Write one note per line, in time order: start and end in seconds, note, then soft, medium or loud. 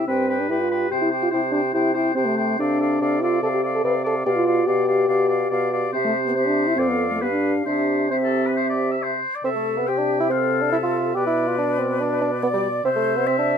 0.07 0.45 G2 soft
0.07 0.41 C4 medium
0.07 0.28 G4 soft
0.07 0.28 B4 soft
0.07 0.29 G5 soft
0.28 0.49 G4 soft
0.28 0.50 B4 soft
0.28 0.50 G5 soft
0.40 0.51 D4 soft
0.49 0.87 G2 soft
0.49 0.61 E4 medium
0.49 0.70 G4 soft
0.49 0.71 B4 soft
0.49 0.71 G5 soft
0.60 0.90 F4 medium
0.71 0.90 G4 soft
0.71 0.91 B4 soft
0.71 0.91 G5 soft
0.91 1.28 C3 soft
0.91 1.01 G4 medium
0.91 1.11 G4 soft
0.91 1.10 C5 soft
0.91 1.12 G5 soft
1.02 1.11 E4 medium
1.11 1.32 G4 soft
1.11 1.31 C5 soft
1.11 1.32 G5 soft
1.22 1.27 F4 medium
1.31 1.69 C3 soft
1.31 1.41 E4 medium
1.31 1.52 G4 soft
1.31 1.52 C5 soft
1.31 1.53 G5 soft
1.52 1.61 D4 medium
1.52 1.73 G4 soft
1.52 1.73 C5 soft
1.52 1.74 G5 soft
1.73 2.11 C3 soft
1.73 1.94 E4 medium
1.73 1.94 G4 soft
1.73 1.93 C5 soft
1.73 1.95 G5 soft
1.94 2.14 E4 medium
1.94 2.15 G4 soft
1.94 2.15 C5 soft
1.94 2.16 G5 soft
2.15 2.55 C3 soft
2.15 2.28 C4 medium
2.15 2.37 G4 soft
2.15 2.37 C5 soft
2.15 2.37 G5 soft
2.26 2.59 A3 medium
2.37 2.59 G4 soft
2.37 2.59 C5 soft
2.37 2.59 G5 soft
2.59 2.97 C3 medium
2.59 3.23 D4 medium
2.59 2.79 A4 soft
2.59 2.81 D5 soft
2.59 2.81 F5 soft
2.80 3.01 A4 soft
2.80 3.01 D5 soft
2.80 3.01 F5 soft
3.01 3.38 C3 soft
3.01 3.21 A4 soft
3.01 3.22 D5 soft
3.01 3.22 F5 soft
3.22 3.42 F4 medium
3.22 3.42 A4 soft
3.22 3.42 D5 soft
3.22 3.43 F5 soft
3.43 3.79 C3 soft
3.43 3.62 A4 soft
3.43 3.47 A4 medium
3.43 3.63 D5 soft
3.43 3.64 F5 soft
3.54 3.63 G4 medium
3.63 3.84 A4 soft
3.63 3.83 D5 soft
3.63 3.85 F5 soft
3.75 3.84 A4 medium
3.84 4.21 C3 medium
3.84 4.04 A4 soft
3.84 3.94 B4 medium
3.84 4.03 D5 soft
3.84 4.05 F5 soft
4.04 4.25 A4 soft
4.04 4.15 A4 medium
4.04 4.25 D5 soft
4.04 4.26 F5 soft
4.25 4.62 B2 medium
4.25 4.46 G4 soft
4.25 4.31 G4 medium
4.25 4.46 D5 soft
4.25 4.46 F5 soft
4.36 4.68 F4 medium
4.47 4.67 G4 soft
4.47 4.66 D5 soft
4.47 4.67 F5 soft
4.67 5.04 B2 medium
4.67 5.73 G4 medium
4.67 4.87 G4 soft
4.67 4.87 D5 soft
4.67 4.87 F5 soft
4.87 5.08 G4 soft
4.87 5.08 D5 soft
4.87 5.08 F5 soft
5.08 5.46 B2 soft
5.08 5.30 G4 soft
5.08 5.28 D5 soft
5.08 5.29 F5 soft
5.29 5.51 G4 soft
5.29 5.50 D5 soft
5.29 5.51 F5 soft
5.50 5.89 B2 medium
5.50 5.72 G4 soft
5.50 5.72 D5 soft
5.50 5.72 F5 soft
5.72 5.94 G4 soft
5.72 5.93 D5 soft
5.72 5.93 F5 soft
5.93 6.80 C3 medium
5.93 5.98 C4 medium
5.93 6.34 G4 soft
5.93 6.33 C5 soft
5.93 6.18 E5 soft
6.05 6.14 A3 medium
6.26 6.35 B3 medium
6.35 6.48 C4 medium
6.35 6.67 G4 soft
6.35 6.80 C5 soft
6.35 6.80 E5 soft
6.46 6.69 D4 medium
6.67 6.76 E4 medium
6.77 7.24 F2 soft
6.77 6.90 C4 medium
6.77 7.24 A4 soft
6.77 7.23 D5 soft
6.77 7.22 F5 soft
6.89 7.10 B3 medium
7.11 7.21 A3 soft
7.21 7.54 G2 soft
7.21 7.26 B3 medium
7.21 7.66 G4 soft
7.21 7.53 B4 soft
7.21 7.69 F5 soft
7.32 7.65 D4 medium
7.66 9.20 C3 soft
7.66 8.13 D4 medium
7.66 8.10 G4 soft
7.66 8.10 C5 soft
7.66 8.10 E5 soft
8.11 9.01 C4 soft
8.11 9.20 G4 soft
8.11 8.16 C5 soft
8.11 9.20 E5 soft
8.23 8.48 A4 soft
8.46 8.56 B4 soft
8.57 8.68 C5 soft
8.69 8.93 D5 soft
8.91 9.04 E5 soft
9.02 9.36 C5 soft
9.35 9.45 D5 soft
9.44 11.17 C3 medium
9.44 9.49 C4 medium
9.44 9.90 A4 medium
9.44 9.90 A4 soft
9.44 9.89 E5 soft
9.56 9.79 A3 soft
9.77 9.89 B3 soft
9.87 10.00 C4 medium
9.87 10.33 G4 soft
9.87 10.32 G4 soft
9.87 10.33 G5 soft
9.98 10.20 D4 medium
10.20 10.25 E4 medium
10.30 10.63 C4 medium
10.30 11.15 A4 soft
10.30 11.15 A4 medium
10.30 10.76 F5 soft
10.62 10.71 D4 medium
10.72 10.77 E4 medium
10.72 11.15 E5 soft
10.83 11.16 F4 medium
11.15 12.84 B2 medium
11.15 11.25 G4 medium
11.15 12.44 B4 medium
11.15 11.99 B4 soft
11.15 11.99 D5 soft
11.27 11.49 E4 medium
11.48 11.58 F4 medium
11.58 11.81 D4 medium
11.80 12.02 C4 medium
12.00 12.21 D4 medium
12.00 12.45 B4 soft
12.00 12.83 D5 soft
12.21 12.31 D4 medium
12.43 12.47 B3 medium
12.43 12.84 D5 medium
12.43 12.86 D5 soft
12.53 12.67 G3 medium
12.84 13.58 C3 medium
12.84 12.89 C4 medium
12.84 13.28 C5 medium
12.84 13.58 C5 medium
12.84 13.58 E5 soft
12.96 13.18 A3 medium
13.17 13.26 B3 medium
13.27 13.37 C4 medium
13.27 13.58 E5 medium
13.38 13.58 D4 medium